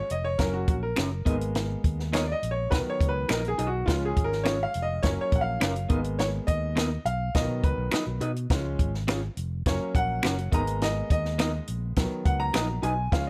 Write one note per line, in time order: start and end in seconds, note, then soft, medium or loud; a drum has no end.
0.00 0.11 C#5 medium
0.10 0.35 F1 medium
0.10 0.26 D#5 medium
0.10 closed hi-hat medium
0.24 0.40 C#5 medium
0.38 0.63 F#1 medium
0.38 0.77 F#3 soft
0.38 0.78 A#3 soft
0.38 0.78 C#4 medium
0.38 0.54 A#4 medium
0.38 kick medium
0.38 snare medium
0.38 closed hi-hat medium
0.54 0.67 F#4 medium
0.68 0.92 A#1 medium
0.68 0.74 F#4 medium
0.68 kick loud
0.68 closed hi-hat medium
0.83 1.66 A#4 medium
0.96 1.22 F#1 medium
0.96 1.08 C#4 medium
0.96 1.09 F#4 medium
0.96 1.09 A#4 medium
0.96 1.09 C#5 medium
0.96 finger snap loud
0.96 snare loud
0.96 closed hi-hat medium
1.25 1.74 G#1 medium
1.25 2.67 G#3 medium
1.25 2.68 A#3 soft
1.25 1.35 B3 medium
1.25 2.68 B3 medium
1.25 1.35 D#4 medium
1.25 1.35 A#4 medium
1.25 1.35 D#5 medium
1.25 kick loud
1.25 closed hi-hat medium
1.41 closed hi-hat soft
1.55 snare loud
1.55 closed hi-hat medium
1.84 2.33 D#2 medium
1.84 kick medium
1.84 closed hi-hat medium
1.99 snare soft
2.13 2.24 B3 medium
2.13 2.25 D#4 medium
2.13 2.25 A#4 medium
2.13 2.18 C#5 medium
2.13 2.25 D#5 medium
2.13 finger snap medium
2.13 snare loud
2.13 closed hi-hat medium
2.27 2.32 D5 medium
2.32 2.50 D#5 medium
2.43 2.67 A#1 medium
2.43 closed hi-hat medium
2.51 2.71 C#5 medium
2.70 2.84 B1 medium
2.70 3.83 D#3 medium
2.70 3.83 F#3 soft
2.70 3.83 B3 medium
2.70 2.76 B4 medium
2.70 kick medium
2.70 snare loud
2.70 closed hi-hat medium
2.86 3.10 C#5 medium
2.86 muted fingered electric bass stroke soft
3.00 3.24 C#2 medium
3.00 kick loud
3.00 closed hi-hat medium
3.09 3.29 B4 medium
3.29 3.54 A#1 medium
3.29 3.41 D#4 medium
3.29 3.41 F#4 medium
3.29 3.49 A#4 medium
3.29 3.41 B4 medium
3.29 3.41 D#5 medium
3.29 finger snap loud
3.29 snare loud
3.29 closed hi-hat medium
3.45 3.68 G#4 medium
3.45 closed hi-hat soft
3.58 3.83 B1 medium
3.58 3.67 D#4 medium
3.58 3.67 F#4 medium
3.58 3.68 B4 medium
3.58 3.68 D#5 medium
3.58 closed hi-hat medium
3.67 3.87 F#4 medium
3.86 4.12 C#2 loud
3.86 4.99 F3 medium
3.86 4.99 G#3 medium
3.86 4.99 C#4 medium
3.86 4.06 F4 medium
3.86 kick medium
3.86 snare loud
3.86 closed hi-hat medium
4.05 4.26 G#4 medium
4.17 4.65 G#1 medium
4.17 kick medium
4.17 closed hi-hat medium
4.24 4.45 A#4 medium
4.32 snare soft
4.43 4.57 C#4 loud
4.43 4.57 F4 loud
4.43 4.57 G#4 medium
4.43 4.64 C#5 medium
4.43 4.57 C#5 loud
4.43 finger snap medium
4.43 snare loud
4.43 closed hi-hat medium
4.63 4.84 F5 loud
4.74 4.99 F1 medium
4.74 closed hi-hat medium
4.82 5.03 D#5 medium
5.03 5.16 F#1 medium
5.03 5.86 F#3 medium
5.03 5.87 A#3 medium
5.03 5.87 C#4 medium
5.03 5.08 C#5 loud
5.03 kick medium
5.03 snare medium
5.03 closed hi-hat medium
5.21 5.34 C#5 medium
5.32 5.56 A#1 medium
5.32 5.42 F#5 medium
5.32 kick loud
5.32 closed hi-hat medium
5.41 5.95 F5 medium
5.61 5.85 F#1 medium
5.61 5.72 C#4 medium
5.61 5.73 F#4 medium
5.61 5.73 A#4 medium
5.61 5.73 C#5 medium
5.61 finger snap loud
5.61 snare loud
5.61 closed hi-hat medium
5.76 closed hi-hat soft
5.89 6.39 G#1 medium
5.89 6.73 G#3 medium
5.89 6.73 A#3 medium
5.89 5.99 B3 medium
5.89 6.74 B3 medium
5.89 5.99 D#4 medium
5.89 5.99 A#4 medium
5.89 5.99 D#5 medium
5.89 kick loud
5.89 closed hi-hat medium
6.04 closed hi-hat soft
6.19 6.25 C#5 medium
6.19 snare loud
6.19 closed hi-hat medium
6.47 6.96 D#2 medium
6.47 7.01 D#5 loud
6.47 kick medium
6.47 closed hi-hat medium
6.76 6.88 B3 medium
6.76 6.88 D#4 medium
6.76 6.88 A#4 medium
6.76 6.89 D#5 medium
6.76 finger snap medium
6.76 snare loud
6.76 closed hi-hat medium
7.05 7.30 B1 medium
7.05 7.36 F5 medium
7.05 closed hi-hat medium
7.35 7.47 B1 medium
7.35 8.17 D#3 medium
7.35 8.18 F#3 soft
7.35 8.18 B3 medium
7.35 7.65 D#5 medium
7.35 kick medium
7.35 snare medium
7.35 closed hi-hat medium
7.49 7.61 B2 medium
7.64 7.76 C#2 medium
7.64 8.18 B4 medium
7.64 kick loud
7.64 closed hi-hat medium
7.78 7.90 B1 medium
7.91 8.04 D#4 medium
7.91 8.04 F#4 medium
7.91 8.04 B4 medium
7.91 8.04 D#5 medium
7.91 finger snap loud
7.91 snare loud
7.91 closed hi-hat medium
8.07 8.19 B1 medium
8.21 8.45 B2 medium
8.21 8.30 D#4 medium
8.21 8.30 F#4 medium
8.21 8.30 B4 medium
8.21 8.31 D#5 medium
8.21 closed hi-hat medium
8.36 closed hi-hat soft
8.50 8.75 C#2 loud
8.50 8.89 F3 soft
8.50 8.89 G#3 medium
8.50 8.89 C#4 medium
8.50 kick loud
8.50 snare loud
8.50 closed hi-hat medium
8.79 9.27 G#1 medium
8.79 kick medium
8.79 closed hi-hat medium
8.94 snare soft
9.08 9.19 C#4 medium
9.08 9.20 F4 medium
9.08 9.20 G#4 medium
9.08 9.20 C#5 medium
9.08 finger snap medium
9.08 snare loud
9.08 closed hi-hat medium
9.37 9.61 F1 medium
9.37 closed hi-hat medium
9.66 9.78 F#1 medium
9.66 10.49 F#3 soft
9.66 10.49 A#3 soft
9.66 10.49 C#4 medium
9.66 9.96 C#5 medium
9.66 kick medium
9.66 snare loud
9.66 closed hi-hat medium
9.81 muted fingered electric bass stroke soft
9.95 10.19 A#1 medium
9.95 10.55 F#5 loud
9.95 kick loud
9.95 closed hi-hat medium
10.23 10.48 F#1 medium
10.23 10.35 C#4 medium
10.23 10.35 F#4 medium
10.23 10.35 A#4 medium
10.23 10.35 C#5 medium
10.23 finger snap loud
10.23 snare loud
10.23 closed hi-hat medium
10.38 closed hi-hat soft
10.52 11.01 G#1 medium
10.52 11.93 G#3 medium
10.52 11.93 A#3 soft
10.52 10.61 B3 medium
10.52 11.93 B3 medium
10.52 10.61 D#4 medium
10.52 10.62 A#4 medium
10.52 10.62 D#5 medium
10.52 10.83 A#5 loud
10.52 kick loud
10.52 closed hi-hat medium
10.67 closed hi-hat medium
10.81 11.10 D#5 medium
10.81 snare loud
10.81 closed hi-hat medium
11.10 11.59 D#2 loud
11.10 11.65 D#5 medium
11.10 kick medium
11.10 closed hi-hat medium
11.25 snare soft
11.38 11.50 B3 medium
11.38 11.51 D#4 medium
11.38 11.51 A#4 medium
11.38 11.51 D#5 medium
11.38 finger snap medium
11.38 snare loud
11.38 closed hi-hat medium
11.67 11.92 A#1 medium
11.67 closed hi-hat medium
11.96 12.09 B1 medium
11.96 12.79 D#3 medium
11.96 12.80 F#3 soft
11.96 12.80 B3 medium
11.96 kick medium
11.96 snare loud
11.96 closed hi-hat medium
12.11 muted fingered electric bass stroke soft
12.25 12.50 C#2 medium
12.25 12.40 F#5 medium
12.25 kick loud
12.25 closed hi-hat medium
12.40 12.85 A#5 loud
12.54 12.78 A#1 medium
12.54 12.66 D#4 medium
12.54 12.66 F#4 medium
12.54 12.66 B4 medium
12.54 12.66 D#5 medium
12.54 finger snap loud
12.54 snare loud
12.54 closed hi-hat medium
12.82 13.07 B1 loud
12.82 12.92 D#4 medium
12.82 12.92 F#4 medium
12.82 12.93 B4 medium
12.82 12.93 D#5 medium
12.82 13.13 G#5 medium
12.82 closed hi-hat medium
13.12 13.30 C#2 loud
13.12 13.30 F3 medium
13.12 13.30 G#3 medium
13.12 13.30 C#4 medium
13.12 13.27 F5 medium
13.12 kick loud
13.12 snare loud
13.12 closed hi-hat medium